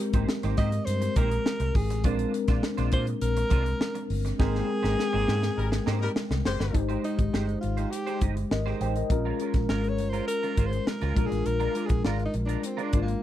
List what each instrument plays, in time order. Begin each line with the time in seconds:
Already playing: tine electric piano G#3 C4 G4 A#4
0.00 muted clean electric guitar stroke
0.13 fingered electric bass G#1, clean electric guitar A#3 D#4 G4 C5, kick, closed hi-hat
0.29 muted clean electric guitar stroke, snare
0.43 fingered electric bass G#1, clean electric guitar A#3 D#4 G4 C5, snare, closed hi-hat
0.57 fingered electric bass G#2, clean electric guitar A#3 D#4 G4 C5, alto saxophone D#5, kick, closed hi-hat
0.72 muted clean electric guitar stroke, closed hi-hat
0.86 fingered electric bass G2, alto saxophone C5, closed hi-hat
1.01 muted clean electric guitar stroke, closed hi-hat
1.16 fingered electric bass A#1, clean electric guitar A#3 D#4 G4 C5, alto saxophone A#4, kick, closed hi-hat
1.31 muted clean electric guitar stroke, closed hi-hat
1.45 muted clean electric guitar stroke, snare
1.60 fingered electric bass C2, muted clean electric guitar stroke, closed hi-hat
1.75 fingered electric bass G#1, alto saxophone G#4, kick, open hi-hat
1.90 fingered electric bass A1, muted clean electric guitar stroke, snare, closed hi-hat
2.04 fingered electric bass A#1, tine electric piano G#3 C4 D4 A#4, clean electric guitar G#3 D4 F4 C5, kick, closed hi-hat
2.19 closed hi-hat
2.34 muted clean electric guitar stroke, closed hi-hat
2.48 fingered electric bass A#1, clean electric guitar G#3 D4 F4 C5, kick, snare, closed hi-hat
2.63 muted clean electric guitar stroke, snare
2.77 fingered electric bass A#1, clean electric guitar G#3 D4 F4 C5, snare, closed hi-hat
2.92 fingered electric bass A#2, clean electric guitar G#3 D4 F4 C5, alto saxophone C5, kick, closed hi-hat
3.07 muted clean electric guitar stroke, closed hi-hat
3.21 fingered electric bass A#1, alto saxophone A#4, closed hi-hat
3.37 muted clean electric guitar stroke, closed hi-hat
3.50 fingered electric bass C2, clean electric guitar G#3 D4 F4 C5, kick, closed hi-hat
3.65 muted clean electric guitar stroke, closed hi-hat
3.80 muted clean electric guitar stroke, snare
3.95 muted clean electric guitar stroke, closed hi-hat
4.10 fingered electric bass G1, open hi-hat
4.25 muted clean electric guitar stroke, snare, closed hi-hat
4.38 fingered electric bass G#1, tine electric piano G#3 C4 A#4 G5, clean electric guitar A#3 D#4 G4 C5, alto saxophone G#4, kick, snare
4.55 snare
4.68 muted clean electric guitar stroke
4.83 fingered electric bass G#1, clean electric guitar A#3 D#4 G4 C5, snare
4.98 muted clean electric guitar stroke, snare
5.13 fingered electric bass G#1, clean electric guitar A#3 D#4 G4 C5
5.27 fingered electric bass G#2, clean electric guitar A#3 D#4 G4 C5, snare
5.42 muted clean electric guitar stroke, snare
5.56 fingered electric bass G#1, horn section G3 D#4 A#4
5.72 muted clean electric guitar stroke, snare
5.86 fingered electric bass G#2, clean electric guitar A#3 D#4 G4 C5, snare
6.00 horn section G3 D#4 A#4, muted clean electric guitar stroke
6.15 muted clean electric guitar stroke, snare
6.31 fingered electric bass C2, muted clean electric guitar stroke, snare
6.45 fingered electric bass F#1, horn section G#3 G4 C5, snare
6.59 fingered electric bass G1, muted clean electric guitar stroke, snare
6.73 fingered electric bass G#1, tine electric piano G#3 D#4 G4 C5, muted clean electric guitar stroke, kick, closed hi-hat
6.89 clean electric guitar G#3 D#4 G4 C5, closed hi-hat
7.04 clean electric guitar G#3 D#4 G4 C5, alto saxophone D#4, closed hi-hat
7.18 fingered electric bass G#1, muted clean electric guitar stroke, kick, closed hi-hat
7.33 fingered electric bass G1, clean electric guitar G#3 D#4 G4 C5, snare
7.48 muted clean electric guitar stroke, closed hi-hat
7.61 fingered electric bass G#1, alto saxophone F4, muted clean electric guitar stroke, closed hi-hat
7.77 clean electric guitar G#3 D#4 G4 C5, closed hi-hat
7.91 alto saxophone G4, muted clean electric guitar stroke, closed hi-hat
8.07 clean electric guitar G#3 D#4 G4 C5, closed hi-hat
8.21 fingered electric bass G1, clean electric guitar G#3 D#4 G4 D#5, kick, closed hi-hat
8.37 muted clean electric guitar stroke, closed hi-hat
8.51 fingered electric bass G#1, tine electric piano A#4 D#5, muted clean electric guitar stroke, snare
8.66 clean electric guitar G#3 D#4 G4 C5, snare
8.81 fingered electric bass A1, clean electric guitar G#3 D#4 G4 C5, tine electric piano C5 G5, closed hi-hat
8.96 tine electric piano A#4 D#5, muted clean electric guitar stroke, closed hi-hat
9.10 fingered electric bass A#1, tine electric piano G#3 C#4 F4 A#4, muted clean electric guitar stroke, kick, closed hi-hat
9.25 clean electric guitar G#3 C#4 F4 A#4
9.40 clean electric guitar G#3 C#4 F4 A#4, closed hi-hat
9.54 fingered electric bass A#1, kick, snare, closed hi-hat
9.69 fingered electric bass G#1, clean electric guitar G#3 C#4 F4 A#4, alto saxophone A#4, snare
9.84 muted clean electric guitar stroke, closed hi-hat
9.89 alto saxophone C#5
9.98 fingered electric bass G1, muted clean electric guitar stroke, closed hi-hat
10.09 clean electric guitar A#4, alto saxophone C5, closed hi-hat
10.14 clean electric guitar G#3 C#4 F4
10.28 alto saxophone A#4, muted clean electric guitar stroke, closed hi-hat
10.43 clean electric guitar G#3 C#4 F4 A#4, closed hi-hat
10.57 fingered electric bass G#1, clean electric guitar G#3 C#4 F4 C5, kick, closed hi-hat
10.66 alto saxophone C5
10.72 muted clean electric guitar stroke, closed hi-hat
10.87 alto saxophone A#4, muted clean electric guitar stroke, snare
11.01 fingered electric bass C#2, clean electric guitar G#3 C#4 F4 A#4, snare, closed hi-hat
11.15 fingered electric bass A#1, tine electric piano G#3 D4 F4 A#4, clean electric guitar G#3 D4 F4 A#4, kick, closed hi-hat
11.26 alto saxophone G#4
11.31 fingered electric bass A1, muted clean electric guitar stroke, snare, closed hi-hat
11.46 fingered electric bass A#1, alto saxophone A#4, muted clean electric guitar stroke, closed hi-hat
11.60 clean electric guitar G#3 D4 F4 A#4, closed hi-hat
11.75 clean electric guitar G#3 D4 F4 A#4, closed hi-hat
11.86 alto saxophone G#4, muted clean electric guitar stroke, kick, closed hi-hat
11.90 fingered electric bass A#1
12.04 fingered electric bass G#1, clean electric guitar G#3 D4 F4 A#4, alto saxophone F4, snare
12.19 muted clean electric guitar stroke, closed hi-hat
12.26 alto saxophone D#4
12.34 fingered electric bass A#1, muted clean electric guitar stroke, closed hi-hat
12.46 clean electric guitar G#3 D4 F4 A#4, alto saxophone D4, closed hi-hat
12.63 alto saxophone C4, muted clean electric guitar stroke, closed hi-hat
12.77 clean electric guitar G#3 D4 F4 A#4, closed hi-hat
12.83 alto saxophone D4
12.93 fingered electric bass G#1, clean electric guitar G#3 D4 F4 C5, tine electric piano G#3 D4 F4 A#4, kick, closed hi-hat
13.02 alto saxophone A#3
13.07 muted clean electric guitar stroke, closed hi-hat